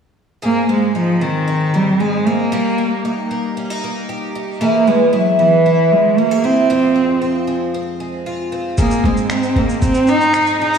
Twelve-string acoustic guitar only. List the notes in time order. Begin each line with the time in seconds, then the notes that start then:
0.42 G#2 G#4
0.69 C4
0.95 D#4
1.21 C4
1.48 D#4
1.74 C4
2.00 G#4
2.27 D#4
2.52 G3 G4
2.78 A#3
3.05 D#4
3.31 A#3
3.57 C#4
3.70 D#4
3.84 A#3
4.09 G4
4.35 D#4
4.61 E3 G#4
4.87 B3
5.13 E4
5.39 B3
5.66 E4
6.18 F#4
6.31 G#4
6.44 E4
6.70 F2 F4
6.96 G#3
7.22 C4
7.47 G#3
7.74 C4
8.00 G#3
8.26 F4
8.52 C4
8.78 G#2 G#4
9.05 C4
9.30 D#4
9.56 C4
9.83 D#4
10.09 C4
10.35 G#4
10.61 C#4
10.75 D#4